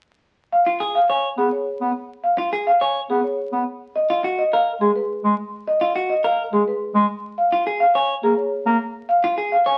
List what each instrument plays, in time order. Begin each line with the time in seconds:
0.52 marimba F5
0.66 clean electric guitar F4
0.80 clean electric guitar G#4
0.95 marimba F5
1.10 clean electric guitar C#5, marimba G#5
1.37 bass clarinet B3, marimba G#4
1.52 marimba C#5
1.81 bass clarinet B3
2.24 marimba F5
2.38 clean electric guitar F4
2.53 clean electric guitar G#4
2.67 marimba F5
2.81 clean electric guitar C#5, marimba G#5
3.10 bass clarinet B3, marimba G#4
3.24 marimba C#5
3.52 bass clarinet B3
3.96 marimba D#5
4.10 clean electric guitar F4
4.24 clean electric guitar F#4
4.38 marimba D#5
4.53 clean electric guitar A#4, marimba F5
4.81 bass clarinet G#3, marimba G#4
4.96 marimba B4
5.24 bass clarinet G#3
5.68 marimba D#5
5.81 clean electric guitar F4
5.96 clean electric guitar F#4
6.10 marimba D#5
6.24 clean electric guitar A#4, marimba F5
6.52 bass clarinet G#3, marimba G#4
6.68 marimba B4
6.95 bass clarinet G#3
7.38 marimba F5
7.52 clean electric guitar F4
7.67 clean electric guitar G#4
7.80 marimba F5
7.95 clean electric guitar C#5, marimba G#5
8.23 bass clarinet A#3, marimba G#4
8.37 marimba C#5
8.66 bass clarinet A#3
9.09 marimba F5
9.24 clean electric guitar F4
9.38 clean electric guitar G#4
9.52 marimba F5
9.66 clean electric guitar C#5, marimba G#5